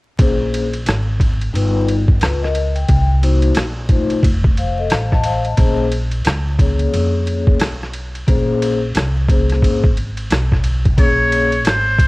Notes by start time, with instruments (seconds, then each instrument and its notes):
0.19 upright bass A#1, vibraphone A#3 C#4 G#4 C5, kick, ride
0.54 ride
0.73 ride
0.86 upright bass G#1, cross-stick, hi-hat pedal, ride
1.20 kick, ride
1.41 ride
1.53 upright bass G1, vibraphone G3 D#4 F4 B4, ride
1.89 ride
2.08 kick
2.21 upright bass C#2, vibraphone F4 B4, cross-stick, hi-hat pedal, ride
2.42 vibraphone A#4 D#5, cross-stick
2.55 ride
2.75 vibraphone G5, ride
2.88 upright bass C2, kick, ride
3.22 vibraphone A#3 D#4 F#4 C5, ride
3.42 ride
3.55 upright bass A#1, cross-stick, hi-hat pedal, ride
3.89 vibraphone A3 D#4 F4 C5, kick, ride
4.10 ride
4.23 upright bass F1, kick, ride
4.44 kick
4.57 vibraphone C5 F5, ride
4.78 vibraphone A4 D#5
4.90 upright bass A1, vibraphone C5 F5, cross-stick, hi-hat pedal, ride
5.11 vibraphone D#5 A5, kick, cross-stick
5.24 vibraphone C5 F5, ride
5.45 vibraphone D#5 A5, ride
5.56 upright bass A#1, vibraphone A#3 C#4 G#4 C5, kick, ride
5.92 ride
6.11 ride
6.25 upright bass C#2, cross-stick, hi-hat pedal, ride
6.58 vibraphone A#3 C#4 G#4 C#5, kick, ride
6.79 ride
6.93 upright bass F2, ride
7.27 ride
7.47 kick
7.60 upright bass B1, cross-stick, hi-hat pedal, ride
7.83 cross-stick
7.93 ride
8.15 ride
8.27 upright bass A#1, vibraphone A#3 C#4 G#4 C5, kick, ride
8.62 ride
8.95 upright bass C2, cross-stick, hi-hat pedal, ride
9.29 vibraphone A#3 C#4 G#4 C5, kick, ride
9.50 cross-stick, ride
9.62 upright bass G#1, kick, ride
9.84 kick
9.97 ride
10.17 ride
10.30 upright bass B1, cross-stick, hi-hat pedal, ride
10.52 kick, cross-stick
10.64 ride
10.85 kick, ride
10.97 upright bass A#1, vibraphone A#3 C#4 G#4 C#5, muted trumpet C#5, kick, ride
11.32 ride
11.52 ride
11.62 upright bass G#1, muted trumpet C#5, hi-hat pedal, ride
11.67 muted trumpet C5, cross-stick
11.99 kick, ride